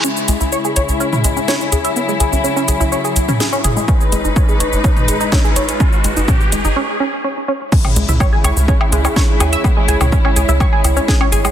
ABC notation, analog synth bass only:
X:1
M:4/4
L:1/16
Q:1/4=125
K:C#m
V:1 name="Analog synth bass" clef=bass
z2 C,, C,, z2 C,, C,, z2 C,, z3 D,, z | z2 C,, C,, z2 C,, C,, z2 C,, z3 G,,, z | z2 G,,, G,,, z2 G,,, G,,, z2 G,,, z3 A,,, z | z2 G,,, G,,, z2 G,,, G,,, z8 |
z2 C,, C,, z2 C,, C,, z2 C,, z3 D,, z | z2 C,, C,, z2 C,, C,, z2 C,, z3 G,,, z |]